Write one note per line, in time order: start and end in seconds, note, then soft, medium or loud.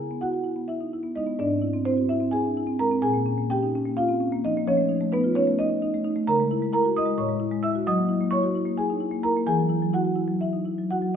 0.00 1.36 C#3 medium
0.00 0.18 E4 soft
0.00 0.20 G#4 medium
0.00 0.21 G#5 medium
0.11 0.30 B3 soft
0.21 0.41 E4 soft
0.21 0.32 F#4 medium
0.21 0.67 F#5 medium
0.33 0.45 F#4 soft
0.44 0.64 E4 soft
0.56 0.76 B3 soft
0.68 0.92 E4 soft
0.68 1.14 E5 medium
0.81 0.93 D#4 soft
0.93 1.12 E4 soft
1.03 1.23 B3 soft
1.15 1.35 G#3 soft
1.15 1.39 D#4 medium
1.15 1.39 D#5 medium
1.27 1.39 B3 soft
1.39 2.98 G#2 medium
1.39 1.83 D4 medium
1.39 1.84 D5 medium
1.51 1.70 C4 soft
1.62 1.81 E4 soft
1.73 1.85 C4 soft
1.85 2.08 C4 medium
1.85 2.05 E4 soft
1.85 2.08 C5 medium
1.97 2.09 F#4 soft
2.09 2.30 E4 medium
2.09 2.32 E5 medium
2.20 2.40 C4 medium
2.31 2.51 E4 soft
2.31 2.76 G#4 medium
2.31 2.77 G#5 medium
2.45 2.56 D4 soft
2.57 2.75 E4 medium
2.67 2.86 C4 medium
2.79 2.98 G#3 soft
2.79 3.02 A#4 medium
2.79 3.02 A#5 medium
2.91 3.03 C4 medium
3.02 4.62 A#2 medium
3.02 3.47 G#4 medium
3.02 3.48 G#5 loud
3.13 3.33 A#3 soft
3.26 3.45 C#4 medium
3.38 3.57 A#3 soft
3.50 3.69 C#4 medium
3.50 3.95 G4 medium
3.50 3.96 G5 medium
3.63 3.74 D#4 medium
3.75 3.93 C#4 medium
3.85 4.04 A#3 medium
3.97 4.16 C#4 medium
3.97 4.41 F4 medium
3.97 4.42 F5 medium
4.09 4.21 C4 soft
4.21 4.39 C#4 medium
4.32 4.51 A#3 medium
4.44 4.63 F3 soft
4.44 4.66 D#4 medium
4.44 4.66 D#5 loud
4.57 4.68 A#3 medium
4.68 6.25 F3 medium
4.68 5.11 C#4 medium
4.68 5.11 C#5 loud
4.77 4.96 A3 medium
4.89 5.08 D#4 medium
5.01 5.20 A3 medium
5.12 5.35 B3 medium
5.12 5.31 D#4 medium
5.12 5.35 B4 medium
5.24 5.36 F4 medium
5.35 5.58 C#4 medium
5.35 5.55 D#4 medium
5.35 5.58 C#5 medium
5.47 5.66 A3 medium
5.59 5.81 D#4 medium
5.59 5.81 D#5 medium
5.69 5.82 C#4 soft
5.82 6.01 D#4 medium
5.94 6.13 A3 medium
6.05 6.23 D#4 medium
6.16 6.28 A3 medium
6.27 7.16 C#3 medium
6.27 6.71 A#4 medium
6.27 6.72 A#5 loud
6.40 6.58 G#3 medium
6.51 6.70 E4 medium
6.62 6.81 G#3 medium
6.73 6.92 E4 medium
6.73 6.95 A#4 medium
6.73 6.96 A#5 loud
6.85 6.97 F#4 soft
6.96 7.15 E4 medium
6.96 7.18 D#5 medium
6.96 7.18 D#6 loud
7.06 7.18 G#3 medium
7.18 7.84 A2 medium
7.18 7.61 C#5 medium
7.18 7.62 C#6 medium
7.29 7.48 G#3 medium
7.40 7.59 E4 medium
7.51 7.70 G#3 medium
7.63 7.82 E4 medium
7.63 7.85 E5 medium
7.63 7.85 E6 medium
7.75 7.87 F#4 medium
7.87 9.44 F#3 medium
7.87 8.30 D#5 medium
7.87 8.31 D#6 loud
7.98 8.17 A#3 soft
8.09 8.28 E4 medium
8.21 8.39 A#3 medium
8.31 8.50 E4 medium
8.31 8.75 C#5 medium
8.31 8.76 C#6 loud
8.43 8.55 F#4 medium
8.55 8.74 E4 medium
8.66 8.85 A#3 medium
8.77 8.96 E4 soft
8.77 9.21 G#4 medium
8.77 9.22 G#5 medium
8.90 9.02 D#4 soft
9.00 9.19 E4 medium
9.11 9.31 A#3 medium
9.23 9.42 E4 medium
9.23 9.46 A#4 medium
9.23 9.46 A#5 medium
9.37 9.48 A#3 medium
9.47 11.10 E3 medium
9.47 9.91 G#4 medium
9.47 9.92 G#5 loud
9.59 9.78 F#3 soft
9.69 9.89 E4 medium
9.82 10.01 F#3 soft
9.93 10.13 E4 medium
9.93 10.04 F#4 medium
9.93 10.40 F#5 medium
10.05 10.17 F#4 soft
10.16 10.36 E4 soft
10.28 10.48 F#3 medium
10.41 10.64 E4 medium
10.41 10.88 E5 medium
10.53 10.66 D#4 soft
10.65 10.85 E4 soft
10.78 10.98 F#3 soft
10.91 11.10 E4 soft
10.91 11.14 F#4 medium
10.91 11.14 F#5 medium
11.02 11.15 F#3 soft